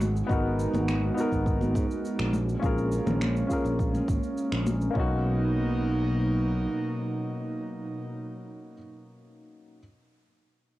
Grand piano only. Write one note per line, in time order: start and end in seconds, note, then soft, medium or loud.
0.27 1.12 B3 medium
0.27 1.13 D#4 medium
0.27 1.14 F#4 medium
0.32 1.15 A#4 medium
1.14 2.30 B3 medium
1.14 2.31 D#4 medium
1.18 2.32 F#4 medium
1.18 2.33 A#4 medium
2.60 3.45 C#4 medium
2.60 3.46 F4 medium
2.64 3.47 G#4 medium
2.64 3.48 A#4 medium
3.47 4.90 C#4 medium
3.47 4.92 F4 medium
3.51 4.93 G#4 medium
3.51 4.94 A#4 medium
4.90 8.72 A#3 medium
4.90 8.73 C#4 medium
4.96 8.75 D#4 medium
4.96 8.76 F#4 medium